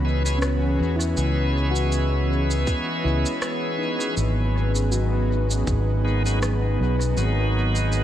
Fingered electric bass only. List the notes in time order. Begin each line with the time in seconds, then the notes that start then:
Already playing: C#2
0.80 E2
1.17 C#2
3.05 C#2
4.17 G#1
5.67 G#1
6.80 B1
7.17 G#1